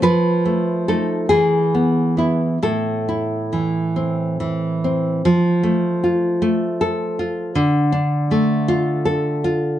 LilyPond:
\new Staff \with { instrumentName = "Nylon-string guitar" } { \time 6/8 \key f \lydian \tempo 4. = 50 << { b'4 a'8 gis'4. | a'2~ a'8 r8 | r2. | r2. | } \\ { f8 a8 <a ees'>8 e8 b8 <b e'>8 | a,8 e'8 e8 c'8 e8 c'8 | f8 a8 f'8 a8 a'8 f'8 | d8 d'8 a8 f'8 a'8 f'8 | } >> }